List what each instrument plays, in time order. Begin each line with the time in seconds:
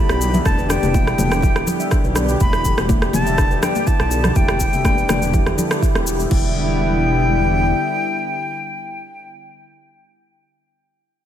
Already playing: analog synth pad D3 G3 B3 G4, flute B5
0.09 detuned saw bass B1, handpan G4, cross-stick, cabasa
0.21 cabasa
0.34 handpan E5, low conga, cabasa
0.45 detuned saw bass E1, handpan D4, flute A5, kick, cross-stick, high conga, cabasa
0.58 handpan B4, cabasa
0.69 handpan D4, flute G5, cross-stick, cabasa
0.82 detuned saw bass E1, handpan G4, mid tom, high conga, cabasa
0.94 handpan E4, kick, high conga, cabasa
1.07 cross-stick, cabasa
1.18 detuned saw bass E1, handpan A4, mid tom, high conga, low conga, cabasa
1.32 cross-stick, cabasa
1.42 handpan E4, kick, low conga, cabasa
1.56 detuned saw bass E1, handpan G4, cross-stick, cabasa
1.67 low conga, cabasa
1.80 handpan E5, cabasa
1.91 handpan D4, kick, cross-stick, cabasa
2.04 detuned saw bass B1, handpan B4, cabasa
2.16 handpan D4, cross-stick, cabasa
2.29 handpan G4, cabasa
2.40 detuned saw bass E1, handpan E4, flute B5, kick, high conga, cabasa
2.53 cross-stick, cabasa
2.65 handpan A4, kick, cabasa
2.77 detuned saw bass E1, cross-stick, high conga, cabasa
2.89 handpan E4, kick, high conga, cabasa
3.02 handpan G4, cross-stick, cabasa
3.13 detuned saw bass E1, flute A5, mid tom, high conga, low conga, cabasa
3.26 handpan E5, cabasa
3.38 handpan D4, kick, cross-stick, mid tom, cabasa
3.51 detuned saw bass E1, handpan B4, cabasa
3.62 handpan D4, flute G5, cross-stick, low conga, cabasa
3.75 handpan G4, high conga, cabasa
3.87 handpan E4, flute A5, kick, cabasa
4.00 detuned saw bass B1, cross-stick, cabasa
4.11 handpan A4, cabasa
4.24 cross-stick, low conga, cabasa
4.36 detuned saw bass E1, handpan E4, flute G5, kick, high conga, cabasa
4.48 handpan G4, cross-stick, cabasa
4.60 kick, cabasa
4.73 detuned saw bass E1, handpan E5, mid tom, high conga, cabasa
4.85 handpan D4, kick, cross-stick, high conga, cabasa
4.97 handpan B4, cabasa
5.09 detuned saw bass E1, handpan D4, cross-stick, mid tom, high conga, low conga, cabasa
5.22 handpan G4, cabasa
5.33 handpan E4, kick, low conga, cabasa
5.46 detuned saw bass E1, cross-stick, cabasa
5.58 handpan A4, low conga, cabasa
5.71 cross-stick, cabasa
5.82 handpan E4, kick, cabasa
5.94 detuned saw bass E1, handpan G4, cross-stick, cabasa
6.07 cabasa
6.19 handpan E5, cabasa
6.30 detuned saw bass E1, analog synth pad D3 G3 B3 E4, handpan E4, flute G5, kick, crash